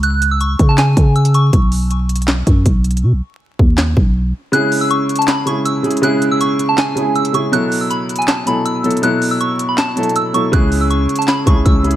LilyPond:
<<
  \new Staff \with { instrumentName = "Synth bell" } { \time 4/4 \key cis \minor \tempo 4 = 160 fis'''8. e'''16 cis'''8. a''16 gis''4 e'''8 cis'''8 | r1 | r1 | fis'''8. e'''16 cis'''8. a''16 b''8 cis'''8 e'''8 r8 |
fis'''8. e'''16 cis'''8. a''16 gis''4 e'''8 cis'''8 | fis'''8. e'''16 b''8. gis''16 a''8 b''8 e'''8 r8 | fis'''8. e'''16 cis'''8. b''16 a''4 e'''8 cis'''8 | fis'''8. e'''16 cis'''8. a''16 b''8 cis'''8 e'''8 r8 | }
  \new Staff \with { instrumentName = "Felt piano" } { \time 4/4 \key cis \minor r1 | r1 | r1 | <cis gis e' gis'>2 r8 <cis gis e' gis'>4 <cis gis e' gis'>8 |
<cis gis e' gis'>2 r8 <cis gis e' gis'>4 <cis gis e' gis'>8 | <b, fis e' a'>2 r8 <b, fis e' a'>4 <b, fis e' a'>8 | <b, fis e' a'>2 r8 <b, fis e' a'>4 <b, fis e' a'>8 | <cis gis e' gis'>2 r8 <cis gis e' gis'>4 <cis gis e' gis'>8 | }
  \new Staff \with { instrumentName = "808-style bass" } { \clef bass \time 4/4 \key cis \minor cis,4. cis4 cis4. | b,,2~ b,,8 fis,8 b,,4 | b,16 b,,16 r4 dis,4 b,,4 r8 | r1 |
r1 | r1 | r1 | cis,4. r4 cis,8 cis,4 | }
  \new DrumStaff \with { instrumentName = "Drums" } \drummode { \time 4/4 hh8 hh8 hh8 <hh bd>8 <hc hh sn>8 <hh bd>8 hh16 hh16 hh8 | <hh bd>8 hho8 \tuplet 3/2 { hh16 r16 r16 hh16 hh16 hh16 } <hc hh sn>8 <hh bd>8 \tuplet 3/2 { <hh bd>16 r16 r16 hh16 hh16 hh16 } | r4 r8 bd8 <hc sn>8 bd8 r4 | hh8 hho8 \tuplet 3/2 { hh16 r16 r16 hh16 hh16 hh16 } <hc hh sn>8 hh8 \tuplet 3/2 { hh16 r16 r16 hh16 hh16 hh16 } |
hh8 hh8 hh8 hh8 <hc hh sn>8 hh8 hh16 hh16 hh8 | hh8 hho8 \tuplet 3/2 { hh16 r16 r16 hh16 hh16 hh16 } <hc hh sn>8 hh8 \tuplet 3/2 { hh16 r16 r16 hh16 hh16 hh16 } | hh8 hho8 hh8 hh8 \tuplet 3/2 { <hc hh sn>16 r16 r16 hh16 hh16 hh16 } hh8 hh8 | <hh bd>8 hho8 \tuplet 3/2 { hh16 r16 r16 hh16 hh16 hh16 } <hc hh sn>8 <hh bd>8 \tuplet 3/2 { <hh bd>16 r16 r16 hh16 hh16 r16 } | }
>>